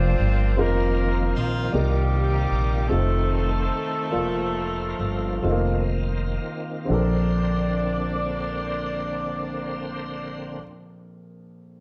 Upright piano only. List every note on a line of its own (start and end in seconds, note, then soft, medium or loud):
0.00 0.58 A#3 medium
0.00 0.58 D4 medium
0.00 0.57 F4 medium
0.00 0.58 A#4 medium
0.00 0.59 D5 medium
0.57 1.73 C4 medium
0.57 1.72 D#4 medium
0.57 1.72 F4 medium
0.57 1.73 A#4 medium
0.57 1.74 C5 medium
1.72 2.87 C3 soft
1.72 2.88 D#4 soft
1.72 2.89 F4 soft
1.72 2.92 A#4 medium
1.72 2.90 D5 medium
2.89 4.12 C4 medium
2.89 4.13 D#4 soft
2.89 4.11 F4 medium
2.89 4.13 A4 medium
4.11 5.44 A#3 medium
4.11 5.42 F4 medium
4.11 5.44 D5 medium
5.42 6.84 C4 medium
5.42 6.90 D#4 medium
5.42 6.90 F4 medium
5.42 5.53 A4 soft
5.51 6.94 A#3 medium
6.85 10.59 A#1 medium
6.85 10.55 C4 medium
6.85 10.58 D4 medium
6.91 10.61 A4 medium
6.91 10.63 A#4 medium